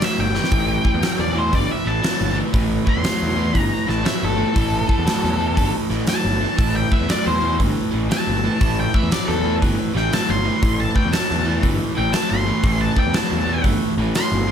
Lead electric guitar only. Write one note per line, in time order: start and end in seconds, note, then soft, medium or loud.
0.04 0.20 E5 medium
0.20 1.17 G5 medium
1.21 1.38 D5 medium
1.38 1.54 C5 medium
1.54 1.70 D5 medium
1.71 1.87 E5 medium
1.87 2.36 A5 loud
2.89 3.60 C6 loud
3.60 3.86 A#5 loud
3.89 4.05 A5 medium
4.06 4.22 E5 medium
4.24 5.71 A4 loud
6.09 6.74 A5 medium
6.76 6.92 G5 medium
6.93 7.09 E5 medium
7.11 7.26 D5 medium
7.27 7.53 C5 medium
8.12 8.76 A5 loud
8.80 8.94 G5 medium
8.94 9.12 E5 medium
9.12 9.28 D5 medium
9.28 9.55 A4 medium
9.97 10.13 G5 medium
10.14 10.29 A5 medium
10.30 10.78 C6 medium
10.80 10.96 A5 medium
10.96 11.12 G5 medium
11.12 11.61 A5 loud
11.98 12.13 G5 loud
12.13 12.29 A5 medium
12.30 12.79 C6 medium
12.81 12.97 A5 medium
12.99 13.15 G5 medium
13.15 13.63 A5 loud
14.16 14.52 C6 loud